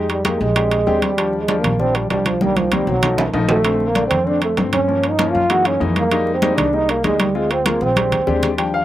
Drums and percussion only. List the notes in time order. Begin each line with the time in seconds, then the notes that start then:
0.09 high conga, high timbale
0.25 high conga, high timbale
0.41 high conga
0.56 high conga, high timbale
0.71 high conga, high timbale
0.87 high conga
1.02 high conga, high timbale
1.18 high conga, high timbale
1.33 high conga
1.48 high conga, high timbale
1.64 high conga, low conga, high timbale
1.80 high conga, low conga
1.95 high conga, high timbale
2.10 high conga, high timbale, low timbale
2.26 high conga, high timbale
2.41 high conga
2.56 high conga, high timbale
2.72 high conga, high timbale
2.87 low conga
3.03 low conga, high timbale
3.18 low conga, high timbale
3.34 high timbale
3.49 low conga, low timbale
3.65 high conga, high timbale
3.80 high conga
3.95 high conga, high timbale
4.11 high conga, low conga, high timbale
4.27 high conga
4.42 high conga, high timbale
4.57 high conga, high timbale, low timbale
4.73 high conga, high timbale
4.89 high conga
5.03 high conga, high timbale
5.19 high conga, high timbale
5.35 high conga
5.50 high conga, high timbale
5.65 high conga, high timbale
5.81 high conga
5.96 high conga, high timbale
6.11 high conga, high timbale
6.27 high conga
6.42 high conga, high timbale
6.58 high conga, low conga, high timbale
6.73 high conga
6.89 high conga, high timbale
7.04 high conga, high timbale
7.20 high conga, high timbale
7.35 high conga
7.51 high conga, high timbale
7.66 high conga, high timbale
7.81 low conga
7.96 high conga, high timbale
8.12 low conga, high timbale
8.27 low conga
8.43 low conga, high timbale
8.58 high conga, high timbale
8.74 high conga